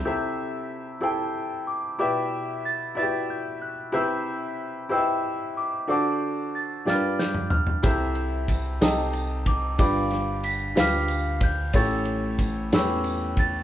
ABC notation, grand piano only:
X:1
M:6/8
L:1/8
Q:3/8=62
K:Clyd
V:1 name="Grand piano"
[C,EGAce]3 [EGAcg]3 | [B,,EGBde]3 [EFGBde]3 | [C,EGBce]3 [EGBc_e=e]3 | [D,DFAcd]3 [G,,D=FG_B=Bd]3 |
[C,EGAce]3 [C,_EGAc_e]3 | [G,,D=FGBd]3 [DFGB=f]3 | [A,,^CEGA^c]3 [B,CEGAB]3 |]